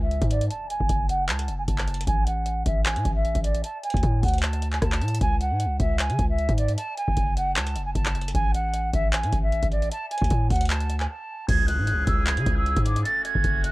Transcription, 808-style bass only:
0.00 0.20 C#2 loud
0.22 0.49 G#2 loud
0.80 0.89 F#1 loud
0.90 1.30 F#1 loud
1.29 1.50 C#2 loud
1.49 1.67 F#1 loud
1.68 2.06 F#1 loud
2.07 2.64 A1 loud
2.66 2.98 A1 loud
2.96 3.05 A2 loud
3.05 3.34 A1 loud
3.35 3.63 A1 loud
3.94 4.03 D2 loud
4.03 4.22 A2 loud
4.23 4.79 D2 loud
4.82 5.03 D2 loud
5.01 5.20 A2 loud
5.21 5.52 C#2 loud
5.51 5.67 G#2 loud
5.65 5.79 C#2 loud
5.80 6.11 C#2 loud
6.10 6.19 C#3 medium
6.19 6.48 C#2 loud
6.49 6.77 G#2 loud
7.08 7.16 F#1 loud
7.17 7.58 F#1 loud
7.56 7.77 C#2 loud
7.76 7.94 F#1 loud
7.95 8.33 F#1 loud
8.35 8.91 A1 loud
8.93 9.25 A1 loud
9.23 9.32 A2 loud
9.33 9.61 A1 loud
9.63 9.90 A1 loud
10.22 10.30 D2 loud
10.31 10.50 A2 loud
10.50 11.07 D2 loud
11.48 11.80 C#2 loud
11.78 11.94 G#2 loud
11.93 12.06 C#2 loud
12.07 12.39 C#2 loud
12.37 12.46 C#3 loud
12.46 12.75 C#2 loud
12.76 13.04 G#2 loud
13.35 13.44 F#1 loud
13.44 13.72 F#1 loud

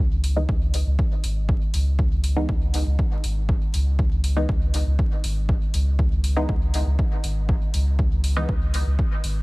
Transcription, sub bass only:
0.11 0.46 C#2 medium
0.49 0.83 C#2 medium
0.86 0.97 C#2 medium
1.24 1.58 G#1 medium
1.74 2.08 C#2 medium
2.11 2.46 C#2 medium
2.49 2.83 C#2 loud
2.86 2.97 C#2 loud
3.24 3.58 G#1 loud
3.74 4.08 C#2 medium
4.12 4.46 C#2 medium
4.49 4.83 C#2 medium
4.87 4.97 C#2 medium
5.24 5.58 G#1 loud
5.74 6.08 C#2 medium
6.11 6.46 C#2 medium
6.49 6.83 C#2 medium
6.86 6.97 C#2 loud
7.24 7.58 G#1 loud
7.74 8.08 C#2 medium
8.11 8.46 C#2 medium
8.49 8.83 C#2 medium
8.86 8.97 C#2 loud
9.24 9.43 G#1 loud

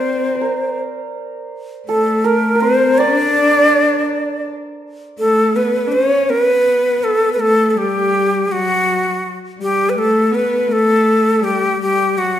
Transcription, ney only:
0.00 0.79 C5 medium
1.88 2.27 A4 medium
2.25 2.62 A#4 medium
2.61 3.00 C5 medium
2.98 4.45 D5 loud
5.19 5.57 A4 medium
5.56 5.94 B4 medium
5.92 6.31 C#5 medium
6.30 6.42 A#4 medium
6.42 7.05 B4 medium
7.04 7.32 A4 medium
7.33 7.41 B4 medium
7.40 7.70 A4 loud
7.70 7.79 A4 medium
7.78 8.53 G4 loud
8.52 9.34 F#4 medium
9.62 9.91 G4 loud
9.89 10.00 B4 medium
9.98 10.36 A4 medium
10.34 10.74 B4 medium
10.72 11.46 A4 loud
11.44 11.80 G4 loud
11.82 12.19 G4 loud
12.18 12.40 F#4 medium

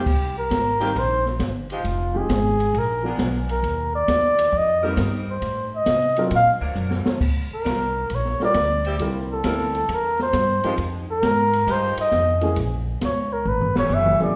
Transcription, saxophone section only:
0.81 0.91 D#3 loud
0.81 0.91 A#3 medium
0.81 0.91 C4 medium
0.81 0.91 G4 loud
1.72 1.81 F3 medium
1.72 1.81 G#3 medium
1.72 1.81 D#4 medium
1.72 1.81 G4 medium
3.05 3.61 G#3 medium
3.05 3.61 B3 medium
3.05 3.62 D4 medium
3.05 3.61 A#4 loud
4.83 5.39 G3 medium
4.83 5.39 C4 medium
4.83 5.40 D#4 medium
4.83 5.39 A#4 loud
6.60 7.17 F#3 loud
6.60 7.18 C4 medium
6.60 7.18 D4 loud
6.60 7.18 A#4 loud
7.64 7.86 G3 medium
7.64 7.85 D4 medium
7.64 7.86 F4 medium
7.64 7.86 A#4 medium
8.86 8.96 G3 medium
8.86 8.96 C4 medium
8.86 8.96 E4 medium
8.86 8.96 G4 loud
9.45 9.65 G3 medium
9.45 9.65 C4 medium
9.45 9.66 E4 medium
9.45 9.65 A#4 loud
10.64 10.74 F3 medium
10.64 10.74 G#3 medium
10.64 10.74 D#4 medium
10.64 10.74 G4 loud
11.68 12.37 F3 loud
11.68 12.37 G#3 medium
11.68 12.37 D#4 medium
11.68 12.37 G4 loud
13.77 14.33 G3 loud
13.77 14.33 B3 medium
13.77 14.33 C#4 medium
13.77 14.33 A4 medium

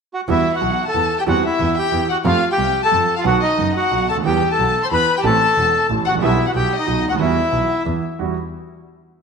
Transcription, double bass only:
0.28 0.42 E2 medium
0.61 0.75 B1 medium
0.94 1.08 E2 medium
1.27 1.41 E2 medium
1.59 1.73 E2 medium
1.93 2.06 E2 medium
2.25 2.39 F2 medium
2.58 2.72 C2 medium
2.92 3.05 F2 medium
3.25 3.39 B1 medium
3.58 3.72 F#1 medium
3.92 4.06 B1 soft
4.09 4.25 D2 soft
4.25 4.39 E2 medium
4.58 4.72 B1 medium
4.92 5.06 E2 medium
5.24 5.38 A1 medium
5.58 5.72 E1 medium
5.90 6.04 A1 medium
6.06 6.22 A1 medium
6.22 6.36 B1 medium
6.55 6.69 B1 medium
6.87 7.01 B1 medium
7.03 7.19 D2 soft
7.20 7.34 E2 medium
7.52 7.66 B1 medium
7.86 8.00 E2 soft
8.19 8.33 E2 soft

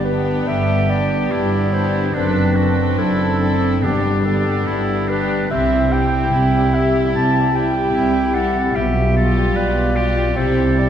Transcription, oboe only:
0.47 1.33 G4 medium
1.31 2.15 E4 medium
2.14 2.57 D4 soft
2.56 2.98 F#4 medium
2.98 3.84 E4 medium
3.82 4.68 D4 medium
4.67 5.10 E4 medium
5.08 5.50 D4 medium
5.50 6.31 C4 medium
6.33 7.65 E4 medium
7.94 8.36 E4 medium
8.35 8.77 A4 medium
8.75 9.15 G4 medium
9.16 9.58 A4 medium
9.56 9.98 B4 medium
9.96 10.36 G4 medium
10.36 10.89 A4 medium

